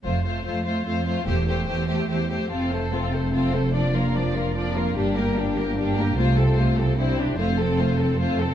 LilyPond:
<<
  \new Staff \with { instrumentName = "Violin section" } { \time 3/4 \key f \major \tempo 4 = 147 c''8 c''8 c''8 c''8 c''8 c''8 | c''8 c''8 c''8 c''8 c''8 c''8 | a'8 c''8 a'8 c''8 a'8 c''8 | d''8 bes'8 d''8 bes'8 d''8 bes'8 |
g'8 bes'8 g'8 bes'8 g'8 bes'8 | c''8 a'8 c''8 a'8 c''8 g'8 | c''8 a'8 c''8 a'8 c''8 a'8 | }
  \new Staff \with { instrumentName = "Violin section" } { \time 3/4 \key f \major f'8 f'8 f'8 f'8 f'8 f'8 | g'8 g'8 g'8 g'8 g'8 g'8 | f'8 a'8 f'8 a'8 f'8 a'8 | d'8 f'8 d'8 f'8 d'8 f'8 |
d'8 g'8 d'8 g'8 d'8 g'8 | f'8 a'8 f'8 a'8 e'8 c'8 | f'8 a'8 f'8 a'8 f'8 a'8 | }
  \new Staff \with { instrumentName = "French horn section" } { \time 3/4 \key f \major r2. | r2. | <a c'>2. | <bes d'>2.~ |
<bes d'>2. | <a f'>2 <d' e'>4 | <c' a'>2. | }
  \new Staff \with { instrumentName = "Viola section" } { \time 3/4 \key f \major a8 a8 a8 a8 a8 a8 | a8 a8 a8 a8 a8 a8 | c'8 a8 c'8 a8 c'8 a8 | f8 bes8 f8 bes8 f8 bes8 |
g8 bes8 g8 bes8 g8 bes8 | a8 c'8 a8 c'8 c'8 d'8 | a8 c'8 a8 c'8 a8 c'8 | }
  \new Staff \with { instrumentName = "Cello section" } { \clef bass \time 3/4 \key f \major f,4 f,4 f,4 | e,4 e,4 e,4 | f,2.~ | f,2. |
g,2. | c2. | f,2. | }
  \new Staff \with { instrumentName = "Double bass section" } { \clef bass \time 3/4 \key f \major f,,4 r2 | e,,4 r2 | f,,2.~ | f,,2. |
g,,2. | c,2. | f,,2. | }
>>